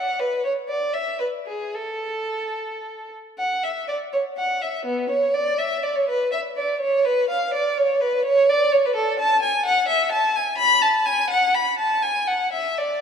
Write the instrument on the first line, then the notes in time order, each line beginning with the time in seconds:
violin
Already playing: F#5
0.19 B4
0.45 C#5
0.69 D5
0.94 E5
1.20 B4
1.46 G#4
1.75 A4
3.39 F#5
3.64 E5
3.88 D5
4.13 C#5
4.38 F#5
4.62 E5
4.86 B3
5.10 C#5
5.34 D5
5.58 E5
5.83 D5
5.96 C#5
6.09 B4
6.32 E5
6.57 D5
6.81 C#5
7.05 B4
7.29 F5
7.54 D5
7.77 C#5
8.01 B4
8.25 C#5
8.49 D5
8.72 C#5
8.85 B4
8.96 A4
9.20 A5
9.43 G#5
9.66 F#5
9.88 E5
10.12 A5
10.36 G#5
10.58 B5
10.82 A5
11.06 G#5
11.30 F#5
11.55 B5
11.79 A5
12.03 G#5
12.27 F#5
12.52 E5
12.78 D5